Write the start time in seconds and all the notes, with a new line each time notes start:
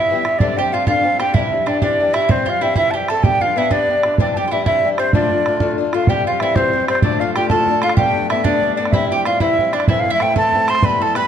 Already playing: G3 B3 E4 G4 E5
0.10 E3 G3 B3 G4
0.25 G3 B3 G4, bodhran
0.39 G2 D3 G3 C4 D4 G4 D5, bodhran
0.57 G3 C4 D4 G4 G5, bodhran
0.72 G3 C4 D4 F4 G4 F5
0.86 G2 D3 G3 C4 D4 F4 G4 F5, bodhran
1.03 G3 C4 D4 G4
1.19 G3 C4 D4 G4 G5, bodhran
1.34 C3 E3 G3 D4 E4 G4 E5, bodhran
1.52 G3 D4 G4, bodhran
1.66 E3 G3 D4 G4 D5, bodhran
1.81 C3 E3 G3 D4 G4 D5, bodhran
2.00 E3 G3 D4 G4
2.14 G3 D4 E4 G4 E5, bodhran
2.29 C3 E3 G3 C4 G4 C5, bodhran
2.46 G3 C4 F4 G4 F5, bodhran
2.61 E3 G3 C4 E4 G4 E5
2.76 C3 E3 G3 C4 E4 G4 E5, bodhran
2.91 E3 G4 A5
2.95 G3 C4 G4 G5
3.08 G3 C4 G4 A4 A5, bodhran
3.23 B3 D4 G4 B4 G5, bodhran
3.41 D4 F4 G4 B4 F5, bodhran
3.56 B3 D4 E4 G4 B4 E5
3.70 B3 D4 G4 B4 D5, bodhran
3.88 B3 D4 G4 B4
4.03 D4 G4 B4, bodhran
4.18 C3 E3 G3 D4 G4 D5, bodhran
4.33 G4 G5 A5, bodhran
4.37 G3 D4
4.48 E3 G3 E4 F4
4.52 D4 G4 E5
4.66 C3 E3 G3 D4 E4 G4 E5, bodhran
4.84 E3 G3 D4 G4
4.98 G3 C4 G4 C5, bodhran
5.13 D2 A2 D3 A3 D4 F4 D5, bodhran
5.31 D3 A3 D4 F4, bodhran
5.46 D3 A3 D4 F4, bodhran
5.60 D2 A2 D3 A3 D4 F4, bodhran
5.78 D3 A3 D4 F4
5.93 D3 A3 D4 F4 F5, bodhran
6.07 C3 E3 G3 C4 G4 G5, bodhran
6.26 G3 C4 F4 G4 F5
6.40 E3 G3 C4 E4 G4 E5, bodhran
6.56 C3 E3 G3 C4 G4 C5, bodhran
6.73 E3 G3 C4 G4, bodhran
6.88 G3 C4 G4 C5, bodhran
6.95 bodhran
7.02 D2 A2 D3 A3 D4 F4 D5, bodhran
7.20 D3 A3 D4 F4 F5
7.34 D3 A3 D4 G4 G5, bodhran
7.38 F4
7.49 D2 A2 D3 A3 D4 F4 A4 A5, bodhran
7.67 D3 A3 D4 F4, bodhran
7.82 A3 D4 F4 F5, bodhran
7.86 D3, bodhran
7.96 G3 A3 B3 D4 G4 G5, bodhran
8.16 A3 B3 D4
8.30 G3 A3 B3 D4 E4 E5, bodhran
8.44 G3 A3 B3 D4 D5, bodhran
8.62 G3 A3 B3 D4, bodhran
8.76 B3 D4 D5
8.80 A3
8.85 bodhran
8.90 C3 E3 G3 C4 E4 E5, bodhran
9.10 G3 C4 E4 G4 G5
9.25 E3 G3 C4 E4 F4 F5, bodhran
9.40 C3 E3 G3 C4 E4 E5, bodhran
9.59 E3 G3 C4 E4, bodhran
9.73 G3 C4 D4 E4 D5, bodhran
9.80 bodhran
9.88 A2 E3 A3 C4 E4 E5, bodhran
10.00 F5
10.06 A3 C4 E4
10.10 E4 E5
10.20 E3 A3 C4 E4 G5, bodhran
10.36 A2 E3 A3 C4 E4 A4 A5, bodhran
10.53 E3 A3 C4 E4, bodhran
10.68 A3 C4 E4 C5 C6, bodhran
10.75 bodhran
10.82 E3 G3 B3 E4 B4 B5, bodhran
11.00 G3 B3 E4 A4 A5
11.15 E3 G3 B3 E4 B4 B5, bodhran